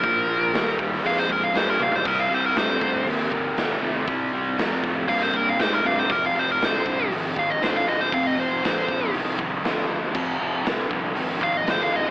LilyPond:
<<
  \new Staff \with { instrumentName = "Lead electric guitar" } { \time 4/4 \key f \dorian \tempo 4 = 119 bes'4. r8 f''16 c''16 bes'16 f''16 c''16 bes'16 f''16 c''16 | bes'16 f''16 c''16 bes'16 c''4 r2 | r2 f''16 c''16 bes'16 f''16 c''16 bes'16 f''16 c''16 | bes'16 f''16 c''16 bes'16 c''4 r8 f''16 ees''16 c''16 f''16 ees''16 c''16 |
f''16 ees''16 c''8 c''4 r2 | r2 r8 f''16 ees''16 c''16 f''16 ees''16 r16 | }
  \new Staff \with { instrumentName = "Overdriven electric guitar" } { \clef bass \time 4/4 \key f \dorian <bes, f>8 <bes, f>8 <bes, g>8 <bes, g>8 <bes, aes>8 <bes, aes>8 <bes, g>8 <bes, g>8 | <c g>8 <c g>8 <c a>8 <c a>8 <c bes>8 <c bes>8 <c a>8 <c a>8 | <c g>8 <c g>8 <c a>8 <c a>8 <c bes>8 <c bes>8 <c a>8 <c a>8 | <f, c>8 <f, c>8 <f, d>8 <f, d>8 <f, ees>8 <f, ees>8 <f, d>8 <f, d>8 |
<f, c>8 <f, c>8 <f, d>8 <f, d>8 <f, ees>8 <f, ees>8 <f, d>8 <f, d>8 | <f, c>8 <f, c>8 <f, d>8 <f, d>8 <f, ees>8 <f, ees>8 <f, d>8 <f, d>8 | }
  \new Staff \with { instrumentName = "Fingered electric bass" } { \clef bass \time 4/4 \key f \dorian bes,,4 ees,4 f,4 g,8 bes,,8 | c,8 c,8 g,8 g,8 ees,8 ees,8 ees,8 ees,8 | c,4 f,4 g,4 aes,8 g,8 | f,,8 f,,8 c,8 c,8 aes,,8 aes,,8 aes,,8 aes,,8 |
f,,4 bes,,4 c,4 d,8 d,8 | f,,8 f,,8 c,8 c,8 aes,,8 aes,,8 aes,,8 aes,,8 | }
  \new DrumStaff \with { instrumentName = "Drums" } \drummode { \time 4/4 <hho bd>4 <hho sn>16 sn16 bd16 sn16 hho8 bd8 <hho sn>8 tommh16 tomfh16 | <cymc bd>4 <hho sn>8 bd8 hho8 bd8 <hho sn>4 | <hho bd>4 <hho sn>8 bd8 hho8 bd8 <hho sn>4 | <hho bd>4 <hho sn>16 sn16 bd8 hho8 bd8 <hho sn>4 |
<hho bd>4 <hho sn>8 bd8 hho8 bd8 <hho sn>4 | <cymc bd>4 <hho sn>8 bd8 hho8 bd8 <hho sn>4 | }
>>